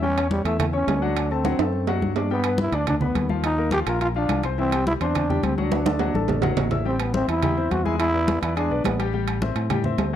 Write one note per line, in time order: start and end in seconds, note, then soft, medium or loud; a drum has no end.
0.00 0.40 E2 medium
0.00 0.14 G3 medium
0.00 0.28 C#4 loud
0.00 0.14 G4 medium
0.00 0.15 G5 medium
0.00 high conga soft
0.17 0.41 C#4 medium
0.17 0.41 C#5 medium
0.17 0.41 C#6 medium
0.17 high conga soft
0.17 high timbale medium
0.31 0.44 G3 medium
0.31 high conga medium
0.45 0.85 E2 medium
0.45 0.58 A3 medium
0.45 0.69 E4 medium
0.45 0.69 E5 medium
0.45 0.69 E6 medium
0.45 high conga soft
0.45 high timbale medium
0.59 0.66 A3 medium
0.59 high conga soft
0.59 low conga medium
0.59 high timbale medium
0.73 0.97 C#4 medium
0.73 1.04 C#4 medium
0.73 0.97 C#5 medium
0.73 0.97 C#6 medium
0.73 high conga soft
0.87 1.53 D2 medium
0.87 high conga medium
0.87 high timbale medium
0.87 low timbale medium
1.02 1.25 F#3 medium
1.02 1.33 D4 medium
1.02 1.25 F#4 medium
1.02 1.26 F#5 medium
1.17 high conga soft
1.17 high timbale medium
1.31 1.42 A3 medium
1.31 1.89 C4 medium
1.31 1.43 A4 medium
1.31 1.43 A5 medium
1.31 high conga soft
1.45 1.57 F#3 medium
1.45 1.57 F#4 medium
1.45 1.57 F#5 medium
1.45 high conga loud
1.45 high timbale medium
1.59 1.99 F#2 medium
1.59 1.83 A3 medium
1.59 1.83 A4 medium
1.59 1.83 A5 medium
1.59 high conga soft
1.59 high timbale medium
1.73 high conga soft
1.87 2.11 F#3 medium
1.87 2.11 F#4 medium
1.87 2.11 F#5 medium
1.87 high conga soft
1.87 low timbale medium
2.01 2.67 G2 medium
2.01 high conga medium
2.16 2.28 D4 medium
2.16 2.28 D5 medium
2.16 2.28 D6 medium
2.16 low timbale medium
2.30 2.42 G3 medium
2.30 2.57 B3 loud
2.30 2.43 G4 medium
2.30 2.42 G5 medium
2.30 high conga soft
2.44 2.68 B3 medium
2.44 2.69 B4 medium
2.44 2.69 B5 medium
2.44 high conga soft
2.44 high timbale medium
2.58 2.77 E4 loud
2.58 high conga medium
2.72 3.12 D2 medium
2.72 2.96 D4 medium
2.72 2.88 D4 medium
2.72 2.96 D5 medium
2.72 2.97 D6 medium
2.72 high conga soft
2.72 high timbale medium
2.87 2.95 D4 medium
2.87 high conga soft
2.87 low conga medium
2.87 high timbale medium
3.01 3.25 B3 medium
3.01 3.29 B3 medium
3.01 3.25 B4 medium
3.01 3.25 B5 medium
3.01 high conga soft
3.01 low conga medium
3.15 3.81 D#2 medium
3.15 high conga medium
3.15 high timbale medium
3.29 3.53 F3 medium
3.29 3.53 F4 medium
3.29 3.53 F5 medium
3.29 high conga medium
3.44 3.71 D#4 loud
3.44 high conga soft
3.44 high timbale medium
3.58 3.70 A#3 medium
3.58 3.70 A#4 medium
3.58 3.70 A#5 medium
3.58 high conga soft
3.71 3.84 F3 medium
3.71 3.84 F4 medium
3.71 3.80 G4 loud
3.71 3.84 F5 medium
3.71 high conga loud
3.71 high timbale medium
3.86 4.26 A#1 medium
3.86 4.10 A#3 medium
3.86 4.00 F4 loud
3.86 4.11 A#4 medium
3.86 4.11 A#5 medium
3.86 high conga soft
3.86 high timbale medium
4.01 4.08 F4 loud
4.01 high conga soft
4.01 high timbale medium
4.15 4.39 F3 medium
4.15 4.42 D4 medium
4.15 4.39 F4 medium
4.15 4.39 F5 medium
4.15 high conga soft
4.29 4.95 C2 medium
4.29 high conga medium
4.29 high timbale medium
4.43 4.56 C4 medium
4.43 4.56 C5 medium
4.43 4.56 C6 medium
4.43 high conga medium
4.43 high timbale medium
4.58 4.70 E3 medium
4.58 4.85 C4 loud
4.58 4.70 E4 medium
4.58 4.70 E5 medium
4.58 high conga soft
4.72 4.96 G3 medium
4.72 4.96 G4 medium
4.72 4.96 G5 medium
4.72 high conga soft
4.72 high timbale medium
4.87 4.93 E4 loud
4.87 high conga medium
5.01 5.40 E2 medium
5.01 5.24 C4 medium
5.01 5.45 D4 medium
5.01 5.25 C5 medium
5.01 5.25 C6 medium
5.01 high conga soft
5.01 high timbale medium
5.15 high conga soft
5.15 low conga medium
5.15 high timbale medium
5.30 5.53 G3 medium
5.30 5.53 G4 medium
5.30 5.53 G5 medium
5.30 high conga soft
5.30 low conga medium
5.43 6.09 D2 medium
5.43 5.57 C4 medium
5.43 high conga medium
5.43 high timbale medium
5.58 5.81 F#3 medium
5.58 6.53 D4 medium
5.58 5.81 F#4 medium
5.58 5.81 F#5 medium
5.58 high conga medium
5.72 high conga medium
5.72 high timbale medium
5.86 5.97 A3 medium
5.86 5.98 A4 medium
5.86 5.98 A5 medium
5.86 high conga loud
5.86 high timbale loud
5.99 6.11 F#3 medium
5.99 6.12 F#4 medium
5.99 6.12 F#5 medium
5.99 low timbale medium
6.14 6.54 A1 medium
6.14 6.38 A3 medium
6.14 6.38 A4 medium
6.14 6.38 A5 medium
6.14 high conga medium
6.28 low conga medium
6.28 low timbale medium
6.42 6.66 F#3 medium
6.42 6.66 F#4 medium
6.42 6.66 F#5 medium
6.42 low conga medium
6.42 low timbale loud
6.57 7.23 A1 medium
6.57 low conga medium
6.57 low timbale medium
6.71 6.83 E4 medium
6.71 6.83 E5 medium
6.71 6.83 E6 medium
6.71 low conga medium
6.71 low timbale medium
6.85 7.09 G3 medium
6.85 7.02 C4 medium
6.85 7.09 G4 medium
6.85 7.09 G5 medium
6.85 high conga soft
7.00 7.15 B3 medium
7.00 high conga soft
7.00 high timbale medium
7.13 7.37 C4 medium
7.13 7.28 C4 loud
7.13 7.37 C5 medium
7.13 7.38 E5 medium
7.13 high conga loud
7.28 7.68 E2 medium
7.28 7.72 E4 loud
7.28 high conga soft
7.28 high timbale medium
7.42 7.54 G3 medium
7.42 7.54 G4 medium
7.42 7.55 G5 medium
7.42 high conga soft
7.42 low conga medium
7.42 high timbale medium
7.57 7.80 C4 medium
7.57 7.80 C5 medium
7.57 7.80 E5 medium
7.57 high conga soft
7.71 8.37 E2 medium
7.71 7.86 F#4 loud
7.71 high conga medium
7.71 high timbale medium
7.84 8.09 G#3 medium
7.84 7.99 E4 medium
7.84 8.09 G#4 medium
7.84 8.09 G#5 medium
7.84 high conga medium
7.99 8.39 E4 loud
7.99 high conga soft
7.99 high timbale medium
8.14 8.37 B3 medium
8.14 8.37 B4 medium
8.14 8.37 D5 medium
8.14 high conga soft
8.28 high conga loud
8.28 high timbale medium
8.42 8.69 E2 medium
8.42 8.54 B3 medium
8.42 8.55 E4 medium
8.42 8.54 B4 medium
8.42 8.54 D5 medium
8.42 high conga soft
8.42 high timbale medium
8.56 8.68 G#3 medium
8.56 8.83 D4 medium
8.56 8.68 G#4 medium
8.56 8.68 G#5 medium
8.56 high conga soft
8.56 high timbale medium
8.71 8.84 B1 medium
8.71 8.94 B3 medium
8.71 8.94 B4 medium
8.71 8.94 D5 medium
8.71 high conga soft
8.84 9.50 A1 loud
8.84 9.05 B3 medium
8.84 high conga medium
8.84 high timbale medium
8.84 low timbale medium
8.99 9.11 G3 medium
8.99 9.11 G4 medium
8.99 9.11 G5 medium
8.99 high timbale medium
9.13 9.37 G3 medium
9.13 9.37 G4 medium
9.13 9.37 G5 medium
9.13 high conga soft
9.27 high conga soft
9.27 high timbale medium
9.42 9.65 C4 medium
9.42 9.65 C5 medium
9.42 9.66 E5 medium
9.42 high conga loud
9.55 9.95 A2 medium
9.55 high conga soft
9.55 high timbale medium
9.70 9.82 G3 medium
9.70 9.82 G4 medium
9.70 9.82 G5 medium
9.70 high conga soft
9.70 low conga medium
9.70 high timbale medium
9.84 10.08 C4 medium
9.84 10.08 C5 medium
9.84 10.08 E5 medium
9.84 high conga soft
9.84 low conga medium
9.98 10.16 D2 medium
9.98 high conga medium
9.98 high timbale medium
9.98 low timbale medium